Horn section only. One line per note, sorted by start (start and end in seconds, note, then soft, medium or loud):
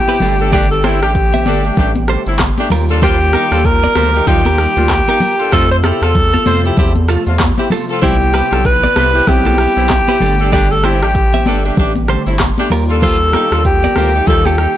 0.08 0.18 C4 medium
0.08 0.18 E4 medium
0.08 0.18 G4 medium
0.40 0.50 D4 medium
0.40 0.50 A4 medium
0.52 0.67 G3 loud
0.52 0.67 A3 loud
0.52 0.67 D4 loud
0.84 0.98 A3 medium
0.84 0.98 C4 medium
0.84 0.98 E4 loud
1.02 1.12 A3 medium
1.02 1.12 D4 medium
1.02 1.12 G4 medium
1.46 1.61 D4 medium
1.46 1.61 A4 loud
1.64 1.75 A3 medium
1.64 1.75 D4 medium
1.64 1.75 G4 medium
1.78 1.92 A3 medium
1.78 1.92 D4 medium
1.78 1.92 G4 loud
2.27 2.37 A3 medium
2.27 2.37 C4 medium
2.27 2.37 E4 medium
2.58 2.69 A3 medium
2.58 2.69 D4 medium
2.58 2.69 G4 medium
2.90 3.00 D4 medium
2.90 3.00 F4 medium
2.90 3.00 A4 loud
3.02 3.17 G3 loud
3.02 3.17 A#3 loud
3.02 3.17 F4 loud
3.34 3.48 A#3 medium
3.34 3.48 D#4 medium
3.34 3.48 G4 loud
3.52 3.62 D4 medium
3.52 3.62 F4 medium
3.52 3.62 A4 medium
3.96 4.11 F4 medium
3.96 4.11 G4 medium
3.96 4.11 A#4 loud
4.14 4.25 A#3 medium
4.14 4.25 D#4 medium
4.14 4.25 G4 loud
4.27 4.42 A#3 medium
4.27 4.42 D#4 medium
4.27 4.42 G4 loud
4.77 4.87 G3 medium
4.77 4.87 A#3 medium
4.77 4.87 F4 medium
5.08 5.19 A#3 medium
5.08 5.18 D#4 medium
5.08 5.19 G4 medium
5.39 5.50 D4 medium
5.39 5.50 F4 medium
5.39 5.50 A4 medium
5.52 5.67 A3 loud
5.52 5.67 C4 loud
5.52 5.67 F4 loud
5.83 5.98 C4 medium
5.83 5.98 E4 medium
5.83 5.98 G4 loud
6.02 6.12 C4 medium
6.02 6.12 F4 medium
6.02 6.12 A4 medium
6.46 6.61 F4 medium
6.46 6.61 A4 medium
6.46 6.61 C5 loud
6.64 6.75 C4 medium
6.64 6.75 E4 medium
6.64 6.75 G4 medium
6.77 6.92 C4 medium
6.77 6.92 E4 medium
6.77 6.92 G4 medium
7.27 7.37 A3 medium
7.27 7.37 C4 medium
7.27 7.37 F4 medium
7.58 7.68 C4 medium
7.58 7.68 E4 medium
7.58 7.68 G4 medium
7.90 8.00 C4 medium
7.90 8.00 F4 medium
7.90 8.00 A4 medium
8.02 8.17 E3 loud
8.02 8.17 C4 loud
8.02 8.17 E4 loud
8.33 8.48 C4 medium
8.33 8.48 E4 medium
8.33 8.48 G4 loud
8.51 8.62 D4 medium
8.51 8.62 F4 medium
8.51 8.62 A4 medium
8.96 9.10 E4 medium
8.96 9.11 G4 medium
8.96 9.10 B4 loud
9.14 9.25 C4 medium
9.14 9.25 E4 medium
9.14 9.25 G4 loud
9.27 9.42 C4 medium
9.27 9.42 E4 medium
9.27 9.42 G4 loud
9.76 9.87 E3 medium
9.76 9.87 C4 medium
9.76 9.87 E4 medium
10.08 10.19 C4 medium
10.08 10.19 E4 medium
10.08 10.19 G4 medium
10.40 10.50 D4 medium
10.40 10.50 A4 medium
10.53 10.67 G3 loud
10.53 10.67 A3 loud
10.53 10.67 D4 loud
10.84 10.98 A3 medium
10.84 10.98 C4 medium
10.84 10.98 E4 loud
11.02 11.12 A3 medium
11.02 11.12 D4 medium
11.02 11.12 G4 medium
11.46 11.61 D4 medium
11.46 11.61 A4 loud
11.64 11.75 A3 medium
11.64 11.75 D4 medium
11.64 11.75 G4 loud
11.78 11.92 A3 medium
11.78 11.92 D4 medium
11.78 11.92 G4 loud
12.27 12.38 A3 medium
12.27 12.38 C4 medium
12.27 12.38 E4 medium
12.58 12.69 A3 medium
12.58 12.69 D4 medium
12.58 12.69 G4 medium
12.90 13.00 D4 medium
12.90 13.00 F4 medium
12.90 13.00 A4 loud
13.03 13.17 G3 loud
13.03 13.17 A#3 loud
13.03 13.17 F4 loud
13.34 13.48 A#3 medium
13.34 13.48 D#4 medium
13.34 13.48 G4 loud
13.52 13.63 D4 medium
13.52 13.63 F4 medium
13.52 13.63 A4 medium
13.96 14.11 F4 medium
13.96 14.11 G4 medium
13.96 14.11 A#4 loud
14.15 14.25 A#3 medium
14.15 14.25 D#4 medium
14.15 14.25 G4 loud
14.28 14.42 A#3 medium
14.28 14.42 D#4 medium
14.28 14.42 G4 loud